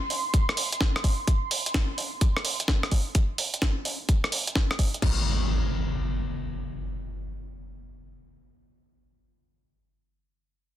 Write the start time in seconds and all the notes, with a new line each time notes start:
Already playing: C6
0.10 open hi-hat
0.34 kick, closed hi-hat
0.49 cross-stick
0.57 open hi-hat
0.72 closed hi-hat
0.81 kick, snare
0.96 cross-stick
1.04 kick, open hi-hat
1.27 kick, closed hi-hat
1.51 open hi-hat
1.66 closed hi-hat
1.74 kick, snare, closed hi-hat
1.98 open hi-hat
2.21 kick, closed hi-hat
2.37 cross-stick
2.45 open hi-hat
2.60 closed hi-hat
2.68 kick, snare
2.83 cross-stick
2.91 kick, open hi-hat
3.15 kick, closed hi-hat
3.38 open hi-hat
3.54 closed hi-hat
3.62 kick, snare, closed hi-hat
3.85 open hi-hat
4.09 kick, closed hi-hat
4.24 cross-stick
4.32 open hi-hat
4.47 closed hi-hat
4.55 kick, snare
4.71 cross-stick
4.79 kick, open hi-hat
4.94 closed hi-hat
5.02 kick, crash, impact